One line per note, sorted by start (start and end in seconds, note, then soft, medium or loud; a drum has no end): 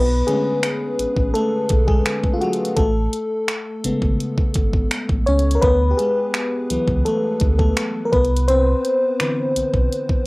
0.00 0.22 B1 loud
0.00 0.25 B3 medium
0.00 0.28 B4 loud
0.27 0.75 D3 medium
0.27 0.96 G#3 medium
0.27 0.75 A3 soft
0.27 0.75 C#4 medium
0.27 0.94 G#4 medium
0.27 closed hi-hat medium
0.63 finger snap loud
0.63 closed hi-hat medium
0.99 1.06 A1 soft
0.99 closed hi-hat medium
1.17 1.32 A1 medium
1.17 kick medium
1.34 1.85 A3 medium
1.34 1.89 A4 loud
1.34 closed hi-hat medium
1.69 2.01 B1 medium
1.69 kick medium
1.69 closed hi-hat medium
1.87 2.32 G#3 medium
1.87 2.31 G#4 medium
1.87 kick medium
2.06 finger snap loud
2.06 closed hi-hat medium
2.24 kick medium
2.33 2.41 F4 medium
2.41 2.75 F#3 medium
2.41 2.78 F#4 medium
2.41 closed hi-hat soft
2.53 closed hi-hat soft
2.65 closed hi-hat medium
2.77 3.08 A1 loud
2.77 3.81 A3 medium
2.77 3.80 A4 medium
2.77 kick loud
2.77 closed hi-hat medium
3.13 closed hi-hat medium
3.48 finger snap loud
3.48 closed hi-hat medium
3.84 3.92 G#1 soft
3.84 4.87 C#3 medium
3.84 4.88 G#3 medium
3.84 4.88 B3 medium
3.84 closed hi-hat medium
4.02 4.17 G#1 medium
4.02 kick medium
4.20 closed hi-hat medium
4.38 kick loud
4.54 4.86 G#1 loud
4.54 kick medium
4.54 closed hi-hat medium
4.73 kick medium
4.91 finger snap loud
4.91 closed hi-hat medium
5.09 5.25 A1 medium
5.09 kick medium
5.26 5.58 C#2 medium
5.26 5.55 C#4 medium
5.26 5.56 C#5 medium
5.26 closed hi-hat soft
5.39 closed hi-hat soft
5.51 closed hi-hat medium
5.55 5.62 A#4 medium
5.62 5.93 D2 loud
5.62 5.90 B3 medium
5.62 5.92 B4 loud
5.62 kick loud
5.62 closed hi-hat medium
5.91 5.98 G4 medium
5.97 6.67 G#3 medium
5.97 6.65 G#4 medium
5.97 closed hi-hat medium
6.34 finger snap loud
6.34 closed hi-hat medium
6.70 6.77 C#2 soft
6.70 7.73 E3 medium
6.70 7.74 F#3 medium
6.70 7.74 B3 medium
6.70 closed hi-hat medium
6.88 7.03 C#2 medium
6.88 kick medium
7.05 7.56 A3 medium
7.05 7.57 A4 medium
7.05 closed hi-hat medium
7.40 7.72 D2 medium
7.40 kick loud
7.40 closed hi-hat medium
7.59 8.03 A3 medium
7.59 8.07 A4 medium
7.59 kick medium
7.77 finger snap loud
7.77 closed hi-hat medium
8.05 8.13 A#4 medium
8.12 8.74 C2 loud
8.12 8.47 B3 medium
8.12 8.46 B4 medium
8.12 kick loud
8.12 closed hi-hat soft
8.25 closed hi-hat soft
8.37 closed hi-hat medium
8.48 9.52 C4 medium
8.48 9.51 C5 loud
8.48 closed hi-hat medium
8.85 closed hi-hat medium
9.20 10.27 D3 medium
9.20 10.27 E3 soft
9.20 10.27 B4 medium
9.20 finger snap loud
9.20 closed hi-hat medium
9.56 9.63 B1 soft
9.56 closed hi-hat medium
9.73 9.89 B1 medium
9.73 kick medium
9.92 closed hi-hat medium
10.09 kick medium